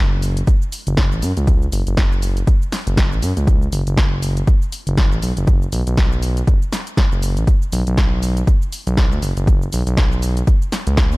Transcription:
Already playing: F#1
0.22 open hi-hat, shaker
0.37 closed hi-hat, shaker
0.47 kick, closed hi-hat, shaker
0.62 shaker
0.72 open hi-hat, shaker
0.87 F#1, closed hi-hat, shaker
0.97 kick, snare, closed hi-hat, shaker
1.12 A1, shaker
1.22 F#2, open hi-hat, shaker
1.37 C#2, closed hi-hat, shaker
1.47 kick, closed hi-hat, shaker
1.62 shaker
1.72 F#1, open hi-hat, shaker
1.87 F#1, closed hi-hat, shaker
1.97 kick, snare, closed hi-hat, shaker
2.12 shaker
2.22 open hi-hat, shaker
2.37 closed hi-hat, shaker
2.47 kick, closed hi-hat, shaker
2.62 shaker
2.72 snare, open hi-hat, shaker
2.87 F#1, closed hi-hat, shaker
2.97 kick, snare, closed hi-hat, shaker
3.12 A1, shaker
3.22 F#2, open hi-hat, shaker
3.37 C#2, closed hi-hat, shaker
3.47 kick, closed hi-hat, shaker
3.62 shaker
3.72 F#1, open hi-hat, shaker
3.87 F#1, closed hi-hat, shaker
3.97 kick, snare, closed hi-hat, shaker
4.22 open hi-hat, shaker
4.37 closed hi-hat, shaker
4.47 kick, closed hi-hat, shaker
4.62 shaker
4.72 open hi-hat, shaker
4.87 F#1, closed hi-hat, shaker
4.97 kick, snare, closed hi-hat, shaker
5.12 A1, shaker
5.22 B1, open hi-hat, shaker
5.37 F#1, closed hi-hat, shaker
5.47 kick, closed hi-hat, shaker
5.62 shaker
5.72 B1, open hi-hat, shaker
5.87 B1, closed hi-hat, shaker
5.97 kick, snare, closed hi-hat, shaker
6.12 shaker
6.22 open hi-hat, shaker
6.37 closed hi-hat, shaker
6.47 F#1, kick, closed hi-hat, shaker
6.62 shaker
6.73 snare, open hi-hat, shaker
6.87 closed hi-hat, shaker
6.97 kick, snare, closed hi-hat, shaker
7.12 F#1, shaker
7.22 open hi-hat, shaker
7.37 A1, closed hi-hat, shaker
7.47 kick, closed hi-hat, shaker
7.62 shaker
7.72 B1, open hi-hat, shaker
7.87 B1, closed hi-hat, shaker
7.97 kick, snare, closed hi-hat, shaker
8.22 open hi-hat, shaker
8.37 closed hi-hat, shaker
8.47 kick, closed hi-hat, shaker
8.62 shaker
8.72 open hi-hat, shaker
8.87 B1, closed hi-hat, shaker
8.97 kick, snare, closed hi-hat, shaker
9.12 D2, shaker
9.22 F#1, open hi-hat, shaker
9.37 F#1, closed hi-hat, shaker
9.47 kick, closed hi-hat, shaker
9.62 shaker
9.72 B1, open hi-hat, shaker
9.87 B1, closed hi-hat, shaker
9.97 kick, snare, closed hi-hat, shaker
10.12 shaker
10.22 open hi-hat, shaker
10.37 closed hi-hat, shaker
10.47 kick, closed hi-hat, shaker
10.62 shaker
10.72 snare, open hi-hat, shaker
10.87 C#2, closed hi-hat, shaker
10.97 kick, snare, closed hi-hat, shaker
11.12 E2, shaker

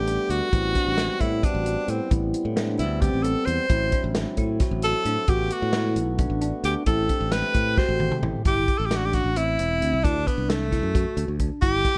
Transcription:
Already playing: A1 G3 A3 B3 G4
0.07 D4, closed hi-hat
0.29 D2 F#4, closed hi-hat
0.53 A1 G3 B3 C4 E4, kick, closed hi-hat
0.75 D4, kick, snare, closed hi-hat
0.87 A1
0.98 snare, closed hi-hat
1.21 A2 E4, kick, closed hi-hat
1.43 D4 F#4, kick, closed hi-hat
1.55 A1
1.66 closed hi-hat
1.88 A2 C4 E4, closed hi-hat
2.11 A1 G3 B3 C4 E4, kick, closed hi-hat
2.34 closed hi-hat
2.45 A2
2.56 D4, snare, closed hi-hat
2.79 D2 E4, closed hi-hat
3.01 C4 G4, kick, closed hi-hat
3.13 A1
3.23 C4 A4, closed hi-hat
3.45 E2 C5, closed hi-hat
3.70 A1 F#3 C4 E4, kick, closed hi-hat
3.92 D4, kick, closed hi-hat
4.04 A1
4.15 snare, closed hi-hat
4.37 A2 E4, kick, closed hi-hat
4.60 F#4, kick, snare, closed hi-hat
4.71 A1
4.82 A4, closed hi-hat
5.05 A2 D4, closed hi-hat
5.28 A1 A3 B3 F#4 G4, kick, closed hi-hat
5.50 F#4, closed hi-hat
5.62 A2
5.73 E4, snare, closed hi-hat
5.96 B1, closed hi-hat
6.19 D4, kick, closed hi-hat
6.30 A1
6.41 D4, closed hi-hat
6.64 D2 G4, closed hi-hat
6.86 A1 A3 C4 E4 G4 A4, kick, closed hi-hat
7.09 D4, kick, closed hi-hat
7.21 A1
7.32 B4, snare, closed hi-hat
7.54 A2 E4, kick, closed hi-hat
7.77 F#4 C5, kick, snare
7.89 A1
8.00 high tom
8.11 mid tom
8.23 A1 E4, mid tom
8.45 G1 E4 G4, kick, closed hi-hat
8.68 kick, closed hi-hat
8.78 A1 A4
8.86 G4
8.91 D4, snare, closed hi-hat
8.96 F#4
9.05 G4
9.13 F#4, kick, snare, closed hi-hat
9.24 A1
9.36 C4 E4, closed hi-hat
9.59 E1 C4, closed hi-hat
9.82 D2, closed hi-hat
9.93 C2
10.04 D2 D4 E4, kick, closed hi-hat
10.27 B3 D4, kick, closed hi-hat
10.38 C2
10.50 A3, snare, closed hi-hat
10.72 E4, kick, snare, closed hi-hat
10.83 F#2
10.95 F#4, kick, closed hi-hat
11.17 D2, closed hi-hat
11.28 D2
11.40 D4, kick, closed hi-hat
11.61 G1 E4 G4, kick, closed hi-hat
11.85 kick, snare, closed hi-hat

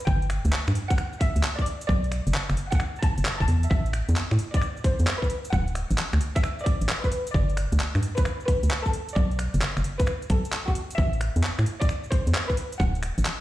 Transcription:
0.07 G1 G5, kick, cabasa
0.22 closed hi-hat, cabasa
0.30 finger snap, open hi-hat
0.45 D2, closed hi-hat, cabasa
0.52 clap, cabasa
0.67 G2, finger snap, cabasa
0.75 open hi-hat
0.90 F#5, kick, closed hi-hat, cabasa
0.98 finger snap, cabasa
1.13 cabasa
1.21 E5, kick, open hi-hat
1.36 D2, closed hi-hat, cabasa
1.43 clap, cabasa
1.59 D5, kick, cabasa
1.66 open hi-hat
1.81 closed hi-hat, cabasa
1.89 B1 D5, kick, cabasa
2.04 closed hi-hat, cabasa
2.12 finger snap, open hi-hat
2.27 F#1, closed hi-hat, cabasa
2.34 clap, cabasa
2.49 F#1, finger snap, cabasa
2.57 open hi-hat
2.72 F#5, kick, closed hi-hat, cabasa
2.80 finger snap, cabasa
2.96 cabasa
3.02 A5, kick, open hi-hat
3.18 F#1, closed hi-hat, cabasa
3.25 clap, cabasa
3.40 F#1 A5, kick, cabasa
3.48 E2, open hi-hat
3.63 closed hi-hat, cabasa
3.71 A1 E5, kick, cabasa
3.85 closed hi-hat, cabasa
3.93 finger snap, open hi-hat
4.09 E2, closed hi-hat, cabasa
4.16 clap, cabasa
4.31 A2, finger snap, cabasa
4.39 open hi-hat
4.54 D5, kick, closed hi-hat, cabasa
4.62 finger snap, cabasa
4.77 cabasa
4.84 C5, kick, open hi-hat
4.99 E2, closed hi-hat, cabasa
5.07 clap, cabasa
5.22 B4, kick, cabasa
5.30 open hi-hat
5.45 closed hi-hat, cabasa
5.53 D1 F#5, kick, cabasa
5.67 closed hi-hat, cabasa
5.75 finger snap, open hi-hat
5.91 A1, closed hi-hat, cabasa
5.98 clap, cabasa
6.13 D2, finger snap, cabasa
6.21 open hi-hat
6.36 E5, kick, closed hi-hat, cabasa
6.44 finger snap, cabasa
6.59 cabasa
6.66 D5, kick, open hi-hat
6.81 A1, closed hi-hat, cabasa
6.89 clap, cabasa
7.04 B4, kick, cabasa
7.12 open hi-hat
7.27 closed hi-hat, cabasa
7.34 G1 D5, kick, cabasa
7.49 closed hi-hat, cabasa
7.57 finger snap, open hi-hat
7.72 D2, closed hi-hat, cabasa
7.80 clap, cabasa
7.95 G2, finger snap, cabasa
8.03 open hi-hat
8.17 B4, kick, closed hi-hat, cabasa
8.25 finger snap, cabasa
8.40 cabasa
8.48 B4, kick, open hi-hat
8.63 D2, closed hi-hat, cabasa
8.71 clap, cabasa
8.86 A4, kick, cabasa
8.93 open hi-hat
9.09 closed hi-hat, cabasa
9.16 B1 D5, kick, cabasa
9.31 closed hi-hat, cabasa
9.39 finger snap, open hi-hat
9.54 F#1, closed hi-hat, cabasa
9.62 clap, cabasa
9.77 F#1, finger snap, cabasa
9.84 open hi-hat
10.00 B4, kick, closed hi-hat, cabasa
10.06 finger snap, cabasa
10.22 closed hi-hat, cabasa
10.30 B1 A4, kick, open hi-hat
10.45 closed hi-hat, cabasa
10.52 clap, cabasa
10.68 F#4, kick, cabasa
10.75 open hi-hat
10.91 closed hi-hat, cabasa
10.98 A1 E5, kick, cabasa
11.13 closed hi-hat, cabasa
11.21 finger snap, open hi-hat
11.36 E2, closed hi-hat, cabasa
11.43 clap, cabasa
11.59 A2, finger snap, cabasa
11.66 open hi-hat
11.81 D5, kick, closed hi-hat, cabasa
11.89 finger snap, cabasa
12.04 cabasa
12.12 C5, kick, open hi-hat
12.27 E2, closed hi-hat, cabasa
12.34 clap, cabasa
12.50 B4, kick, cabasa
12.57 open hi-hat
12.72 closed hi-hat, cabasa
12.80 D1 F#5, kick, cabasa
12.95 closed hi-hat, cabasa
13.03 finger snap, open hi-hat
13.18 A1, closed hi-hat, cabasa
13.25 clap, cabasa

